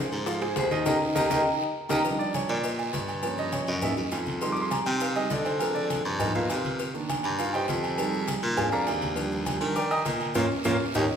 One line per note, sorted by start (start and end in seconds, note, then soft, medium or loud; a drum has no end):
0.00 0.21 G#3 medium
0.00 0.22 G#4 medium
0.00 0.22 C5 medium
0.12 0.53 G#2 loud
0.12 high conga soft
0.12 short guiro medium
0.12 maracas soft
0.26 0.39 F3 medium
0.26 0.39 F4 loud
0.26 0.39 F5 medium
0.26 high bongo medium
0.26 high conga soft
0.26 high timbale medium
0.26 long guiro medium
0.26 maracas medium
0.41 0.66 G#3 medium
0.41 0.66 G#4 medium
0.41 0.66 C5 medium
0.41 high conga soft
0.41 high timbale loud
0.41 maracas soft
0.56 0.84 D#2 medium
0.56 0.72 C5 medium
0.56 high bongo medium
0.56 low bongo medium
0.56 high conga medium
0.56 low timbale medium
0.56 short guiro medium
0.56 maracas medium
0.71 0.83 D#3 medium
0.71 0.83 D#4 loud
0.71 0.83 D#5 medium
0.71 0.85 D#5 loud
0.71 high conga soft
0.71 high timbale medium
0.71 short guiro medium
0.71 maracas soft
0.86 0.97 D#2 loud
0.86 0.95 D#4 loud
0.86 0.95 G4 loud
0.86 0.95 A#4 loud
0.86 0.96 D#5 loud
0.86 0.96 G5 medium
0.86 0.96 A#5 loud
0.86 high bongo loud
0.86 high conga loud
0.86 high timbale loud
0.86 long guiro loud
0.86 maracas loud
1.15 1.27 D#2 medium
1.15 1.25 D#4 loud
1.15 1.25 G4 loud
1.15 1.25 A#4 loud
1.15 1.26 D#5 loud
1.15 1.26 G5 medium
1.15 1.26 A#5 loud
1.15 high bongo loud
1.15 high conga loud
1.15 high timbale loud
1.15 long guiro loud
1.15 maracas loud
1.30 1.42 D#2 loud
1.30 1.40 D#4 loud
1.30 1.40 G4 medium
1.30 1.40 A#4 loud
1.30 1.41 D#5 medium
1.30 1.41 G5 medium
1.30 1.41 A#5 medium
1.30 high bongo loud
1.30 high conga loud
1.30 high timbale loud
1.30 long guiro loud
1.30 maracas loud
1.89 2.01 D#2 medium
1.89 2.00 D#4 loud
1.89 1.99 G4 loud
1.89 2.00 A#4 loud
1.89 2.00 D#5 loud
1.89 2.00 G5 loud
1.89 2.01 A#5 loud
1.89 high bongo loud
1.89 high conga loud
1.89 high timbale loud
1.89 long guiro loud
1.89 maracas loud
2.04 2.47 F3 medium
2.04 2.47 G3 medium
2.04 2.47 D4 medium
2.04 cowbell loud
2.04 high conga soft
2.04 long guiro medium
2.04 maracas medium
2.19 2.34 D5 medium
2.19 high conga soft
2.19 maracas soft
2.34 2.49 C#5 medium
2.34 cowbell medium
2.34 high conga medium
2.34 low timbale medium
2.34 low agogo loud
2.34 short guiro medium
2.34 maracas medium
2.49 2.91 A#2 loud
2.49 2.64 D5 medium
2.49 cowbell medium
2.49 high conga soft
2.49 low agogo medium
2.49 short guiro medium
2.49 maracas soft
2.64 2.79 D#5 medium
2.64 cowbell loud
2.64 high conga soft
2.64 low agogo medium
2.64 long guiro medium
2.64 maracas medium
2.79 high conga soft
2.79 low agogo loud
2.79 maracas soft
2.93 3.62 G2 medium
2.93 cowbell medium
2.93 high conga medium
2.93 low timbale medium
2.93 short guiro medium
2.93 maracas medium
3.08 high conga soft
3.08 low agogo medium
3.08 short guiro medium
3.08 maracas soft
3.22 3.80 F3 medium
3.22 3.80 A#3 medium
3.22 3.80 C#4 medium
3.22 cowbell loud
3.22 high conga soft
3.22 low agogo loud
3.22 long guiro medium
3.22 maracas medium
3.38 3.53 D#5 loud
3.38 high conga soft
3.38 maracas soft
3.52 3.68 C#5 medium
3.52 cowbell medium
3.52 high conga medium
3.52 low timbale medium
3.52 low agogo medium
3.52 short guiro medium
3.52 maracas medium
3.66 3.96 F#2 loud
3.66 3.83 D#5 medium
3.66 high conga soft
3.66 short guiro medium
3.66 maracas soft
3.82 4.02 E3 medium
3.82 4.03 G#3 soft
3.82 4.03 A#3 medium
3.82 4.03 D#4 medium
3.82 3.92 E5 medium
3.82 cowbell loud
3.82 high conga soft
3.82 low conga medium
3.82 low agogo loud
3.82 long guiro medium
3.82 maracas medium
3.97 4.11 F#2 medium
3.97 high conga soft
3.97 maracas soft
4.11 4.81 F2 medium
4.11 cowbell medium
4.11 high conga soft
4.11 low timbale medium
4.11 low agogo medium
4.11 short guiro medium
4.11 maracas medium
4.26 high conga medium
4.26 short guiro medium
4.26 maracas soft
4.41 4.84 G3 medium
4.41 4.84 G#3 medium
4.41 4.85 D#4 medium
4.41 4.52 C6 medium
4.41 cowbell loud
4.41 high conga soft
4.41 long guiro medium
4.41 maracas medium
4.52 4.62 D6 loud
4.52 maracas soft
4.57 high conga soft
4.62 4.71 C6 medium
4.71 4.86 A#5 medium
4.71 cowbell medium
4.71 high conga loud
4.71 low timbale medium
4.71 low agogo loud
4.71 short guiro medium
4.71 maracas medium
4.86 5.28 C3 loud
4.86 5.01 G5 medium
4.86 cowbell medium
4.86 high conga soft
4.86 low agogo medium
4.86 short guiro medium
4.86 maracas soft
5.00 5.16 F5 medium
5.00 cowbell loud
5.00 high conga soft
5.00 low agogo medium
5.00 long guiro medium
5.00 maracas medium
5.15 5.29 G3 medium
5.15 5.30 G#3 soft
5.15 5.30 D#4 medium
5.15 5.31 D#5 loud
5.15 high conga soft
5.15 low agogo loud
5.15 maracas soft
5.30 6.00 D3 medium
5.30 5.46 D5 medium
5.30 cowbell medium
5.30 high conga medium
5.30 low timbale medium
5.30 short guiro medium
5.30 maracas medium
5.45 5.60 C5 medium
5.45 high conga soft
5.45 low agogo medium
5.45 short guiro medium
5.45 maracas soft
5.59 6.17 F3 medium
5.59 6.17 G#3 soft
5.59 6.17 C4 medium
5.59 5.75 A#4 medium
5.59 cowbell loud
5.59 high conga soft
5.59 low agogo loud
5.59 long guiro medium
5.59 maracas medium
5.75 5.84 D5 medium
5.75 high conga soft
5.75 maracas soft
5.90 cowbell medium
5.90 high conga loud
5.90 low timbale medium
5.90 low agogo medium
5.90 short guiro medium
5.90 maracas medium
6.05 6.33 G2 loud
6.05 high conga soft
6.05 short guiro medium
6.05 maracas soft
6.19 6.40 F3 medium
6.19 6.40 B3 medium
6.19 6.35 D#4 medium
6.19 6.34 A#4 medium
6.19 6.34 B4 medium
6.19 6.35 D#5 medium
6.19 cowbell loud
6.19 high conga soft
6.19 low conga medium
6.19 low agogo loud
6.19 long guiro medium
6.19 maracas medium
6.35 6.49 A#2 medium
6.35 6.77 F4 medium
6.35 6.77 A#4 medium
6.35 6.77 B4 medium
6.35 6.77 F5 medium
6.35 high conga soft
6.35 low conga medium
6.35 maracas soft
6.49 6.93 C3 medium
6.49 cowbell medium
6.49 high conga soft
6.49 low timbale medium
6.49 low agogo medium
6.49 short guiro medium
6.49 maracas medium
6.65 high conga medium
6.65 short guiro medium
6.65 maracas soft
6.79 cowbell loud
6.79 high conga soft
6.79 long guiro medium
6.79 maracas medium
6.94 7.37 D#3 medium
6.94 7.37 A#3 medium
6.94 7.37 D4 medium
6.94 high conga soft
6.94 maracas soft
7.09 cowbell medium
7.09 high conga medium
7.09 low timbale medium
7.09 low agogo loud
7.09 short guiro medium
7.09 maracas medium
7.23 7.66 G2 loud
7.23 cowbell medium
7.23 high conga soft
7.23 low agogo medium
7.23 short guiro medium
7.23 maracas soft
7.38 7.54 F4 medium
7.38 7.54 F5 medium
7.38 cowbell loud
7.38 high conga soft
7.38 low agogo medium
7.38 long guiro medium
7.38 maracas medium
7.53 7.96 G4 medium
7.53 7.96 C5 medium
7.53 7.96 D#5 medium
7.53 7.96 G5 medium
7.53 high conga soft
7.53 low agogo loud
7.53 maracas soft
7.68 8.37 F2 medium
7.68 cowbell medium
7.68 high conga medium
7.68 low timbale medium
7.68 short guiro medium
7.68 maracas medium
7.83 high conga soft
7.83 low agogo medium
7.83 short guiro medium
7.83 maracas soft
7.97 8.40 G3 medium
7.97 8.40 G#3 medium
7.97 8.41 D#4 medium
7.97 cowbell loud
7.97 high conga soft
7.97 low agogo loud
7.97 long guiro medium
7.97 maracas medium
8.13 high conga soft
8.13 maracas soft
8.28 cowbell medium
8.28 high conga medium
8.28 low timbale medium
8.28 low agogo medium
8.28 short guiro medium
8.28 maracas medium
8.42 8.70 A#2 loud
8.42 high conga soft
8.42 short guiro medium
8.42 maracas soft
8.56 9.13 G#3 medium
8.56 9.14 C4 medium
8.56 9.14 D4 medium
8.56 8.72 G#4 medium
8.56 8.71 D5 medium
8.56 8.71 F5 medium
8.56 8.72 G#5 medium
8.56 cowbell loud
8.56 high conga soft
8.56 low conga medium
8.56 low agogo loud
8.56 long guiro medium
8.56 maracas medium
8.72 8.86 F2 medium
8.72 9.14 A#4 medium
8.72 9.14 D5 medium
8.72 9.14 F5 medium
8.72 9.14 A#5 loud
8.72 high conga soft
8.72 maracas soft
8.87 9.56 D#2 medium
8.87 cowbell medium
8.87 high conga soft
8.87 low timbale medium
8.87 low agogo loud
8.87 short guiro medium
8.87 maracas medium
9.01 high conga medium
9.01 short guiro medium
9.01 maracas soft
9.16 9.59 F3 medium
9.16 9.59 G3 medium
9.16 9.59 D4 medium
9.16 cowbell loud
9.16 high conga soft
9.16 long guiro medium
9.16 maracas medium
9.32 high conga soft
9.32 maracas soft
9.46 cowbell medium
9.46 high conga loud
9.46 low timbale medium
9.46 low agogo loud
9.46 short guiro medium
9.46 maracas medium
9.61 10.02 D#3 loud
9.61 9.74 F3 medium
9.61 9.75 G3 soft
9.61 9.75 D4 medium
9.61 cowbell medium
9.61 high conga soft
9.61 low agogo loud
9.61 short guiro medium
9.61 maracas soft
9.75 9.91 D5 medium
9.75 9.90 G5 medium
9.75 9.90 A#5 medium
9.75 9.91 D6 medium
9.75 cowbell loud
9.75 high conga soft
9.75 low agogo loud
9.75 long guiro medium
9.75 maracas medium
9.91 10.33 D#5 medium
9.91 10.33 G5 medium
9.91 10.33 A#5 medium
9.91 10.32 D#6 loud
9.91 high conga soft
9.91 low agogo loud
9.91 maracas soft
10.05 10.33 A#2 medium
10.05 cowbell medium
10.05 high conga medium
10.05 low timbale medium
10.05 short guiro medium
10.05 maracas medium
10.20 high conga soft
10.20 low agogo medium
10.20 short guiro medium
10.20 maracas soft
10.35 10.47 A#2 loud
10.35 10.45 A#3 loud
10.35 10.45 C#4 loud
10.35 10.45 F4 loud
10.35 cowbell loud
10.35 low conga loud
10.35 high timbale medium
10.35 long guiro loud
10.35 maracas loud
10.64 10.76 A#2 loud
10.64 10.75 A#3 loud
10.64 10.75 C#4 loud
10.64 10.75 F4 loud
10.64 cowbell loud
10.64 low conga loud
10.64 high timbale loud
10.64 long guiro loud
10.64 maracas loud
10.94 11.06 D#2 loud
10.94 11.05 C#4 loud
10.94 11.05 D#4 loud
10.94 11.05 G4 loud
10.94 cowbell medium
10.94 low conga loud
10.94 high timbale loud
10.94 long guiro loud
10.94 maracas loud